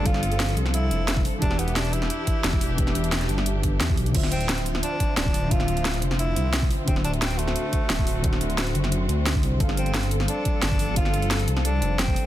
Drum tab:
CC |----------------|----------------|----------------|x---------------|
HH |x-xxxxx-x-x-x-o-|x-xxxxx-x-x-x-o-|x-xxxxx-x-x-x-ox|x-xxxxx-x-x-x-o-|
SD |-o--o--o----o---|-o--o--o----o---|-o--oo-o----o---|-o--o--o----o---|
BD |o------------o--|o---------o--o--|o---------o--o--|o---------o--o--|

CC |----------------|----------------|----------------|----------------|
HH |x-xxxxx-x-x-x-o-|x-xxxxx-x-x-x-o-|x-xxxxx-x-x-x-o-|x-xxxxx-x-x-x-o-|
SD |-o--o--o----o---|-o--o--o----o---|-o--o--o----o---|-o--o--o----o---|
BD |o------------o--|o---------o--o--|o------------o--|o---------o--o--|

CC |----------------|
HH |x-xxxxx-x-x-x-o-|
SD |-o--o--o----o---|
BD |o------------o--|